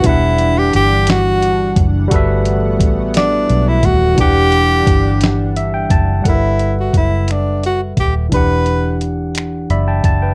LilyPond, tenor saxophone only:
\new Staff \with { instrumentName = "Tenor saxophone" } { \time 6/8 \key e \minor \tempo 4. = 58 e'8. g'16 g'8 fis'4 r8 | r4. d'8. e'16 fis'8 | g'2 r4 | e'8. fis'16 e'8 d'8 fis'8 g'8 |
b'4 r2 | }